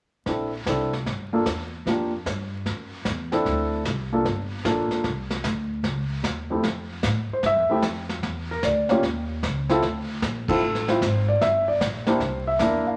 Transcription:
0.26 0.65 A#1 medium
0.26 0.51 C4 soft
0.26 0.51 D4 soft
0.26 0.51 E4 soft
0.26 0.52 A4 soft
0.26 brush sweep soft
0.26 kick soft
0.26 snare soft
0.66 1.05 C2 medium
0.66 0.90 C4 soft
0.66 0.91 D4 soft
0.66 0.91 E4 soft
0.66 0.91 A4 soft
0.66 kick soft
0.66 snare soft
0.66 hi-hat pedal soft
0.93 snare soft
1.06 1.45 G2 medium
1.06 brush sweep soft
1.06 kick soft
1.06 snare soft
1.33 1.45 A#3 medium
1.33 1.45 D4 soft
1.33 1.45 F4 soft
1.33 1.45 A4 medium
1.46 1.84 E2 medium
1.46 kick soft
1.46 snare soft
1.46 hi-hat pedal soft
1.86 2.24 F2 medium
1.86 2.10 A#3 soft
1.86 2.11 D4 soft
1.86 2.11 F4 soft
1.86 2.11 G4 soft
1.86 brush sweep soft
1.86 kick soft
1.86 snare soft
2.26 2.64 G2 medium
2.26 kick soft
2.26 snare soft
2.26 hi-hat pedal soft
2.65 3.04 F#2 medium
2.65 brush sweep soft
2.65 kick soft
2.65 snare soft
3.05 3.44 E2 medium
3.05 kick soft
3.05 snare soft
3.05 hi-hat pedal soft
3.32 3.82 C4 medium
3.32 3.83 D4 medium
3.32 3.83 E4 medium
3.32 3.83 A4 medium
3.32 snare soft
3.45 3.84 D2 medium
3.45 brush sweep soft
3.45 kick soft
3.45 snare soft
3.85 4.23 C2 medium
3.85 kick soft
3.85 snare soft
3.85 hi-hat pedal soft
4.13 4.24 A#3 soft
4.13 4.24 D4 soft
4.13 4.24 F4 soft
4.13 4.25 A4 medium
4.24 4.63 G1 medium
4.24 brush sweep soft
4.24 kick soft
4.24 snare soft
4.65 4.89 A#1 medium
4.65 5.04 A#3 soft
4.65 5.05 D4 soft
4.65 5.05 F4 soft
4.65 5.05 A4 soft
4.65 kick soft
4.65 snare soft
4.65 hi-hat pedal soft
4.91 muted upright bass stroke soft
4.91 snare soft
5.04 5.43 C2 medium
5.04 brush sweep soft
5.04 kick soft
5.04 snare soft
5.30 snare soft
5.44 5.82 D2 medium
5.44 kick soft
5.44 snare soft
5.44 hi-hat pedal soft
5.83 6.22 C#2 medium
5.83 brush sweep soft
5.83 kick soft
5.83 snare soft
6.23 6.62 D#2 medium
6.23 kick soft
6.23 snare soft
6.23 hi-hat pedal soft
6.50 6.62 F2 soft
6.50 6.63 A3 soft
6.50 6.63 C4 soft
6.50 6.63 E4 soft
6.50 6.63 G4 soft
6.63 7.02 F2 medium
6.63 brush sweep soft
6.63 kick soft
6.63 snare soft
7.03 7.28 A2 medium
7.03 kick soft
7.03 snare soft
7.03 hi-hat pedal medium
7.29 muted upright bass stroke soft
7.33 7.45 C5 medium
7.43 7.56 G2 medium
7.43 7.82 E5 medium
7.43 brush sweep soft
7.43 kick soft
7.43 snare soft
7.56 7.69 F2 medium
7.69 7.82 E2 medium
7.69 7.82 A3 medium
7.69 7.82 C4 medium
7.69 7.82 E4 medium
7.69 7.83 G4 medium
7.82 8.21 F2 medium
7.82 kick soft
7.82 snare soft
7.82 hi-hat pedal medium
8.09 snare soft
8.23 8.61 E2 medium
8.23 brush sweep soft
8.23 kick soft
8.23 snare soft
8.51 8.63 A#4 medium
8.63 9.01 D2 medium
8.63 9.01 D5 medium
8.63 kick soft
8.63 snare soft
8.63 hi-hat pedal medium
8.89 9.01 A#3 medium
8.89 9.02 C#4 medium
8.89 9.02 F4 medium
8.89 9.02 G4 medium
8.89 snare soft
9.03 9.41 D#2 medium
9.03 brush sweep soft
9.03 kick soft
9.03 snare soft
9.43 9.81 C#2 medium
9.43 kick soft
9.43 snare soft
9.43 hi-hat pedal medium
9.69 9.81 C4 medium
9.69 9.81 E4 medium
9.69 9.82 F4 medium
9.69 9.82 A4 medium
9.69 snare soft
9.82 10.21 D2 medium
9.82 brush sweep soft
9.82 kick soft
9.82 snare soft
10.22 10.60 A#1 medium
10.22 kick soft
10.22 snare soft
10.22 hi-hat pedal medium
10.48 10.61 C4 medium
10.48 10.61 E4 soft
10.48 10.61 F4 medium
10.48 10.85 A4 medium
10.48 kick medium
10.48 ride medium
10.62 11.00 A1 medium
10.62 brush sweep medium
10.75 snare soft
10.88 11.00 C4 soft
10.88 11.01 E4 soft
10.88 11.01 F4 medium
10.88 11.25 C5 medium
10.88 snare soft
11.01 11.39 G#1 medium
11.01 kick soft
11.01 snare soft
11.01 hi-hat pedal soft
11.28 11.41 D5 medium
11.41 11.79 G1 medium
11.41 11.67 E5 medium
11.41 brush sweep soft
11.41 kick soft
11.41 snare soft
11.68 11.80 D5 medium
11.80 12.19 A#1 medium
11.80 kick soft
11.80 snare soft
11.80 hi-hat pedal medium
12.07 12.19 A#3 medium
12.07 12.19 D4 medium
12.07 12.19 E4 medium
12.07 12.20 G4 medium
12.07 12.44 C5 medium
12.07 snare soft
12.20 12.58 C2 medium
12.20 brush sweep soft
12.20 kick soft
12.20 snare soft
12.47 12.84 E5 medium
12.59 12.84 E2 medium
12.59 12.97 A#3 medium
12.59 12.97 D4 medium
12.59 12.97 E4 soft
12.59 12.97 A#4 medium
12.59 kick soft
12.59 snare soft
12.59 hi-hat pedal medium
12.86 12.97 F5 medium
12.86 muted upright bass stroke soft

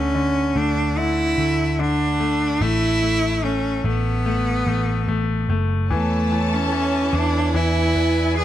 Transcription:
0.00 0.52 D2 loud
0.00 0.13 D3 medium
0.00 0.54 A3 medium
0.00 0.59 C#4 loud
0.15 0.96 D3 medium
0.56 1.34 D2 loud
0.56 1.36 A3 medium
0.56 1.00 D4 loud
0.97 1.78 D3 medium
0.97 1.81 E4 loud
1.38 2.57 D2 loud
1.38 2.18 A3 medium
1.79 2.59 D3 medium
1.79 2.63 D4 loud
2.20 2.60 A3 medium
2.61 3.80 A1 loud
2.61 3.01 A3 medium
2.61 3.46 E4 loud
3.03 3.42 A3 medium
3.44 3.83 A3 medium
3.44 3.87 C#4 loud
3.84 4.63 A1 loud
3.84 4.24 A3 medium
3.84 5.49 B3 loud
4.26 4.66 A3 medium
4.67 5.05 A1 loud
4.67 5.07 A3 medium
5.08 5.46 A1 medium
5.08 5.48 A3 medium
5.49 5.92 F#1 loud
5.49 5.89 A3 medium
5.89 7.09 E2 loud
5.89 6.30 E3 medium
5.89 6.56 A3 medium
5.89 8.45 E4 medium
5.89 7.52 A4 medium
5.89 7.52 C#5 medium
5.89 7.52 A5 medium
6.31 6.70 E3 medium
6.54 7.17 C#4 loud
6.72 7.11 E3 medium
7.13 7.51 E2 loud
7.13 7.53 E3 medium
7.13 7.57 D4 loud
7.54 7.93 E2 loud
7.54 8.35 E3 medium
7.54 8.37 E4 loud
7.54 8.45 B4 medium
7.54 8.45 D5 medium
7.54 8.45 G#5 medium
7.95 8.45 E2 loud
7.95 8.45 B3 medium
8.37 8.45 E3 medium
8.37 8.45 G#4 loud

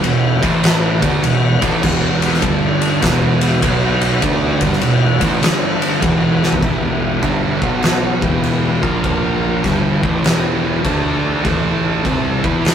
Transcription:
0.00 0.34 E2 medium
0.00 0.35 B2 medium
0.00 0.40 E3 medium
0.00 0.40 B3 medium
0.00 0.40 F#4 medium
0.00 ride loud
0.04 0.40 E1 medium
0.40 0.98 A1 medium
0.40 1.01 A2 medium
0.40 1.01 E3 loud
0.40 1.01 A3 medium
0.40 1.01 A3 loud
0.40 1.00 E4 medium
0.40 1.00 B4 medium
0.40 kick loud
0.40 ride medium
0.64 snare loud
0.64 ride loud
1.00 1.22 D2 medium
1.00 1.22 D3 medium
1.00 2.41 E3 medium
1.00 1.22 A3 loud
1.00 2.40 B3 medium
1.00 1.23 D4 loud
1.00 2.41 F#4 medium
1.00 kick loud
1.00 ride medium
1.23 1.60 E1 medium
1.23 1.54 E2 medium
1.23 1.54 B2 medium
1.23 ride loud
1.62 1.82 A1 loud
1.62 1.82 A2 loud
1.62 1.82 E3 medium
1.62 1.83 A3 loud
1.62 kick loud
1.62 ride medium
1.83 2.39 E1 medium
1.83 2.42 E2 medium
1.83 2.42 B2 loud
1.83 2.43 E3 loud
1.83 kick loud
1.83 crash loud
2.22 ride medium
2.34 snare soft
2.41 2.99 G1 loud
2.41 3.01 G2 medium
2.41 3.02 D3 loud
2.41 3.02 G3 medium
2.41 3.02 G3 loud
2.41 3.01 D4 medium
2.41 3.02 A4 medium
2.41 kick loud
2.41 ride medium
2.82 ride medium
3.00 3.59 E1 medium
3.00 3.61 E2 loud
3.00 3.60 B2 loud
3.00 3.61 E3 medium
3.00 3.62 E3 loud
3.00 5.39 B3 medium
3.00 4.20 F#4 medium
3.00 kick loud
3.00 snare loud
3.00 ride medium
3.41 ride medium
3.62 4.19 B1 medium
3.62 4.21 B2 medium
3.62 4.22 F#3 medium
3.62 4.22 B3 loud
3.62 4.22 B4 medium
3.62 kick loud
3.62 ride loud
4.01 ride medium
4.22 4.59 D2 medium
4.22 4.60 D3 medium
4.22 5.42 E3 medium
4.22 4.60 A3 medium
4.22 4.60 D4 medium
4.22 5.41 F#4 medium
4.22 kick loud
4.22 ride loud
4.61 4.81 G1 loud
4.61 4.81 G2 medium
4.61 4.81 D3 medium
4.61 4.82 G3 loud
4.61 kick loud
4.61 ride medium
4.73 snare soft
4.81 5.19 E1 medium
4.81 5.13 E2 medium
4.81 5.13 B2 medium
4.81 ride loud
5.20 5.40 A1 medium
5.20 5.41 A2 medium
5.20 5.42 E3 loud
5.20 5.42 A3 medium
5.20 kick loud
5.20 ride medium
5.41 5.98 G1 medium
5.41 6.01 G2 medium
5.41 6.02 D3 loud
5.41 6.02 G3 loud
5.41 6.02 G3 medium
5.41 6.02 D4 medium
5.41 6.02 A4 medium
5.41 snare loud
5.41 ride loud
5.82 ride medium
6.02 6.59 E1 medium
6.02 6.60 E2 medium
6.02 6.61 B2 medium
6.02 6.62 E3 loud
6.02 6.63 E3 medium
6.02 6.63 B3 medium
6.02 6.63 F#4 medium
6.02 kick loud
6.02 ride loud
6.43 snare medium
6.52 floor tom medium
6.62 7.19 E1 medium
6.62 7.22 E2 medium
6.62 7.22 B2 medium
6.62 7.22 E3 loud
6.62 8.22 B3 medium
6.62 7.62 G4 medium
6.62 7.61 E5 medium
6.62 kick loud
6.62 crash medium
7.22 7.59 G1 medium
7.22 7.60 G2 medium
7.22 7.61 D3 loud
7.22 7.61 G3 loud
7.22 kick loud
7.22 crash medium
7.62 8.18 B1 loud
7.62 8.21 B2 medium
7.62 8.21 F#3 medium
7.62 8.21 B3 loud
7.62 8.22 F#4 medium
7.62 8.23 F#5 medium
7.62 kick loud
7.82 snare loud
7.82 crash medium
8.21 8.79 E1 medium
8.21 8.81 E2 medium
8.21 8.81 B2 loud
8.21 8.81 E3 loud
8.21 8.83 E4 medium
8.21 8.83 B4 medium
8.21 8.83 G5 medium
8.21 kick loud
8.43 crash medium
8.81 9.60 A#1 loud
8.81 9.63 A#2 medium
8.81 9.63 F3 medium
8.81 9.63 A#3 loud
8.81 9.63 F4 medium
8.81 9.63 A#4 medium
8.81 9.63 A#5 medium
8.81 kick loud
9.04 kick loud
9.04 crash medium
9.64 10.01 G1 medium
9.64 10.02 G2 medium
9.64 10.02 D3 loud
9.64 10.02 G3 loud
9.64 10.84 E4 medium
9.64 10.84 B4 medium
9.64 10.83 G5 medium
9.64 kick loud
9.64 snare soft
9.64 crash medium
10.02 10.23 A1 medium
10.02 10.23 A2 medium
10.02 10.24 E3 loud
10.02 10.24 A3 loud
10.02 kick loud
10.23 10.81 E1 medium
10.23 10.84 E2 medium
10.23 10.83 B2 medium
10.23 10.84 E3 loud
10.23 snare loud
10.23 crash medium
10.84 11.41 D2 loud
10.84 11.44 D3 medium
10.84 11.44 A3 loud
10.84 11.44 D4 medium
10.84 11.45 D4 loud
10.84 11.44 A4 medium
10.84 12.42 A5 medium
10.84 kick loud
10.84 crash medium
11.44 12.01 A1 medium
11.44 12.04 A2 medium
11.44 12.04 E3 loud
11.44 12.05 A3 loud
11.44 12.75 E4 medium
11.44 12.43 A4 medium
11.44 kick loud
11.44 crash medium
12.04 12.41 C2 loud
12.04 12.42 C3 medium
12.04 12.43 G3 medium
12.04 12.43 C4 loud
12.04 kick loud
12.04 crash medium
12.43 12.75 E2 loud
12.43 12.75 E3 medium
12.43 12.75 B3 medium
12.43 12.75 E4 loud
12.43 12.75 B4 medium
12.43 12.75 B5 medium
12.43 kick loud
12.65 snare loud
12.65 crash medium

